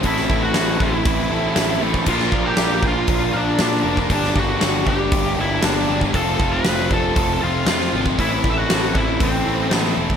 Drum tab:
CC |----------------|x---------------|----------------|----------------|
HH |o---o---o---o---|----o---o---o---|o---o---o---o---|o---o---o---o---|
SD |-o--o-------o---|-o--o-------oo--|-o--o-------oo--|----o-------oo--|
BD |o-o---o-o------o|o-o---o-o------o|o-o---o-o------o|o-o---o-o------o|

CC |----------------|
HH |o---o---o---o---|
SD |----o-------oo--|
BD |o-o---o-o------o|